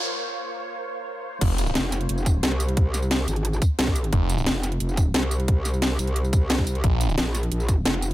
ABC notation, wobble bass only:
X:1
M:4/4
L:1/8
Q:1/4=177
K:Fm
V:1 name="Wobble bass" clef=bass
z8 | z2 F,,,2 F,,,2 C,,2- | C,,3 A,,,2 z C,,2 | z2 F,,,2 F,,,2 C,,2- |
C,,3 C,,4- C,, | z2 B,,,2 B,,,2 F,,,2 |]